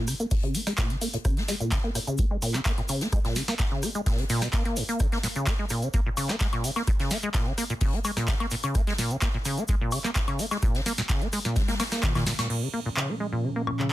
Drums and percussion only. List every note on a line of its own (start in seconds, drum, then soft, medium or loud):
0.08 cross-stick soft
0.08 open hi-hat loud
0.08 shaker medium
0.20 closed hi-hat soft
0.20 shaker medium
0.31 kick loud
0.31 closed hi-hat medium
0.31 open hi-hat medium
0.31 shaker soft
0.43 closed hi-hat soft
0.55 open hi-hat loud
0.55 shaker medium
0.66 cross-stick medium
0.66 snare medium
0.66 closed hi-hat soft
0.66 shaker medium
0.78 kick loud
0.78 snare loud
0.78 clap loud
0.78 closed hi-hat medium
0.78 shaker soft
0.78 shaker medium
0.90 closed hi-hat medium
1.01 open hi-hat loud
1.01 shaker loud
1.01 shaker medium
1.13 closed hi-hat soft
1.13 closed hi-hat medium
1.13 shaker medium
1.25 kick loud
1.25 cross-stick medium
1.25 closed hi-hat medium
1.25 shaker medium
1.25 shaker soft
1.37 snare soft
1.37 closed hi-hat soft
1.48 snare medium
1.48 open hi-hat loud
1.48 shaker medium
1.61 closed hi-hat soft
1.61 shaker medium
1.72 kick loud
1.72 snare loud
1.72 clap loud
1.72 closed hi-hat medium
1.72 shaker medium
1.72 shaker soft
1.95 cross-stick soft
1.95 open hi-hat loud
1.95 shaker medium
2.08 closed hi-hat soft
2.08 shaker medium
2.18 kick loud
2.18 closed hi-hat medium
2.18 shaker medium
2.18 shaker soft
2.42 open hi-hat loud
2.42 shaker medium
2.54 cross-stick medium
2.54 snare medium
2.54 clap soft
2.54 closed hi-hat soft
2.54 shaker medium
2.65 kick loud
2.65 snare loud
2.65 clap loud
2.65 closed hi-hat medium
2.65 shaker soft
2.66 shaker medium
2.78 closed hi-hat soft
2.88 open hi-hat loud
2.88 shaker loud
2.88 shaker medium
3.01 snare soft
3.01 closed hi-hat soft
3.01 shaker medium
3.12 kick loud
3.12 cross-stick medium
3.12 closed hi-hat medium
3.12 shaker soft
3.12 shaker medium
3.24 snare soft
3.24 closed hi-hat soft
3.36 snare medium
3.36 open hi-hat loud
3.36 shaker loud
3.36 shaker medium
3.48 snare medium
3.48 closed hi-hat soft
3.48 shaker medium
3.58 kick loud
3.58 snare loud
3.58 clap loud
3.58 closed hi-hat medium
3.58 shaker medium
3.58 shaker soft
3.83 cross-stick soft
3.83 open hi-hat loud
3.83 shaker medium
3.95 closed hi-hat soft
3.95 shaker medium
4.06 kick loud
4.06 snare loud
4.06 closed hi-hat medium
4.06 shaker soft
4.06 shaker medium
4.18 closed hi-hat soft
4.30 open hi-hat loud
4.30 shaker loud
4.30 shaker medium
4.41 cross-stick medium
4.41 snare medium
4.41 closed hi-hat soft
4.41 shaker medium
4.52 kick loud
4.52 snare loud
4.52 clap loud
4.52 closed hi-hat medium
4.52 shaker soft
4.52 shaker medium
4.65 closed hi-hat soft
4.76 open hi-hat loud
4.76 shaker medium
4.89 closed hi-hat soft
4.89 shaker medium
5.00 kick loud
5.00 cross-stick medium
5.00 closed hi-hat medium
5.00 shaker medium
5.00 shaker soft
5.12 snare soft
5.12 closed hi-hat soft
5.23 snare medium
5.23 open hi-hat loud
5.23 shaker medium
5.23 shaker loud
5.36 closed hi-hat soft
5.36 shaker medium
5.47 kick loud
5.47 snare loud
5.47 clap loud
5.47 closed hi-hat medium
5.47 shaker medium
5.47 shaker soft
5.69 cross-stick soft
5.69 open hi-hat loud
5.69 shaker medium
5.82 closed hi-hat soft
5.82 shaker medium
5.93 kick loud
5.93 closed hi-hat medium
5.93 shaker soft
5.93 shaker medium
6.17 open hi-hat loud
6.17 high woodblock medium
6.17 shaker medium
6.29 cross-stick medium
6.29 snare medium
6.29 clap soft
6.29 shaker medium
6.40 kick loud
6.40 snare loud
6.40 clap loud
6.40 closed hi-hat medium
6.40 shaker medium
6.40 shaker soft
6.53 closed hi-hat soft
6.53 high woodblock medium
6.64 open hi-hat loud
6.64 shaker medium
6.76 snare soft
6.76 closed hi-hat soft
6.76 high woodblock medium
6.76 shaker soft
6.87 kick loud
6.87 cross-stick medium
6.87 closed hi-hat medium
6.87 shaker medium
6.87 shaker soft
6.99 snare soft
6.99 closed hi-hat soft
7.11 snare medium
7.11 open hi-hat loud
7.11 shaker medium
7.22 closed hi-hat soft
7.22 shaker soft
7.34 kick loud
7.34 snare loud
7.34 clap loud
7.34 closed hi-hat medium
7.34 shaker medium
7.34 shaker soft
7.58 cross-stick soft
7.58 open hi-hat loud
7.58 shaker medium
7.70 closed hi-hat soft
7.70 shaker soft
7.81 kick loud
7.81 closed hi-hat medium
7.81 open hi-hat medium
7.81 shaker soft
7.93 closed hi-hat soft
8.04 open hi-hat loud
8.04 high woodblock medium
8.04 shaker medium
8.17 cross-stick medium
8.17 snare medium
8.17 closed hi-hat soft
8.17 shaker medium
8.28 kick loud
8.28 snare loud
8.28 clap loud
8.28 closed hi-hat medium
8.28 shaker medium
8.28 shaker soft
8.40 closed hi-hat medium
8.40 high woodblock medium
8.51 open hi-hat loud
8.51 shaker medium
8.63 closed hi-hat soft
8.63 closed hi-hat medium
8.63 high woodblock medium
8.63 shaker soft
8.75 kick loud
8.75 cross-stick medium
8.75 closed hi-hat medium
8.75 shaker soft
8.75 shaker medium
8.87 snare soft
8.87 closed hi-hat soft
8.98 snare medium
8.98 open hi-hat loud
8.98 shaker medium
9.10 closed hi-hat soft
9.10 shaker soft
9.21 kick loud
9.21 snare loud
9.21 clap loud
9.21 closed hi-hat medium
9.21 shaker medium
9.21 shaker soft
9.45 cross-stick soft
9.45 open hi-hat loud
9.45 shaker medium
9.58 closed hi-hat soft
9.58 shaker soft
9.68 kick loud
9.68 closed hi-hat medium
9.68 shaker medium
9.68 shaker soft
9.91 open hi-hat loud
9.91 high woodblock medium
9.91 shaker medium
10.04 cross-stick medium
10.04 snare medium
10.04 clap soft
10.04 shaker soft
10.15 kick loud
10.15 snare loud
10.15 clap loud
10.15 closed hi-hat medium
10.15 shaker soft
10.15 shaker medium
10.28 closed hi-hat medium
10.28 high woodblock medium
10.39 open hi-hat loud
10.39 shaker medium
10.51 snare soft
10.51 closed hi-hat medium
10.51 high woodblock medium
10.51 shaker soft
10.63 kick loud
10.63 cross-stick medium
10.63 closed hi-hat medium
10.63 shaker medium
10.63 shaker soft
10.74 snare soft
10.74 closed hi-hat soft
10.86 snare medium
10.86 open hi-hat loud
10.86 shaker medium
10.97 snare medium
10.97 shaker soft
11.08 kick loud
11.08 snare loud
11.08 clap loud
11.08 closed hi-hat medium
11.08 shaker soft
11.08 shaker medium
11.22 closed hi-hat soft
11.32 cross-stick soft
11.32 open hi-hat loud
11.32 shaker medium
11.45 snare medium
11.45 closed hi-hat soft
11.45 shaker soft
11.56 kick loud
11.56 snare loud
11.56 closed hi-hat medium
11.56 high tom medium
11.56 shaker soft
11.56 shaker medium
11.68 snare loud
11.68 closed hi-hat soft
11.68 high tom medium
11.68 shaker medium
11.80 snare medium
11.80 snare loud
11.80 open hi-hat loud
11.80 high woodblock medium
11.80 shaker medium
11.91 cross-stick medium
11.91 snare loud
11.91 snare medium
11.91 shaker soft
11.91 shaker medium
12.02 kick loud
12.02 snare loud
12.02 clap loud
12.02 closed hi-hat medium
12.02 mid tom medium
12.02 shaker medium
12.02 shaker soft
12.15 snare loud
12.15 clap soft
12.15 closed hi-hat medium
12.15 mid tom medium
12.15 high woodblock medium
12.15 shaker medium
12.26 snare loud
12.26 open hi-hat loud
12.26 shaker medium
12.38 snare medium
12.38 closed hi-hat soft
12.38 closed hi-hat medium
12.38 high woodblock medium
12.38 shaker medium
12.50 crash medium
12.97 clap loud
13.67 high woodblock medium
13.79 clap soft